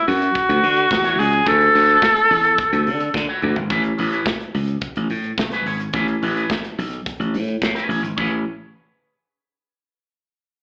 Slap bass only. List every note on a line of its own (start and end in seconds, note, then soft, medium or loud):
0.08 0.29 F#2 loud
0.49 0.60 D2 loud
0.63 0.85 D3 loud
0.91 1.13 E2 loud
1.19 1.40 C#2 loud
1.47 1.68 D2 loud
1.75 1.96 D2 loud
2.31 2.52 E2 loud
2.72 2.88 D2 medium
2.87 3.08 D3 loud
3.15 3.25 D3 loud
3.43 3.54 D2 medium
3.57 3.68 G#1 medium
3.70 3.92 A1 loud
3.99 4.20 A1 medium
4.54 4.76 C#2 medium
4.97 5.07 A1 medium
5.10 5.31 A2 loud
5.38 5.59 B1 loud
5.66 5.87 G#1 medium
5.94 6.15 A1 loud
6.22 6.44 A1 medium
6.78 7.00 B1 medium
7.20 7.35 A1 loud
7.34 7.55 A2 loud
7.62 7.72 A2 medium
7.89 8.00 A1 medium
8.02 8.13 G#1 medium
8.18 8.44 A1 loud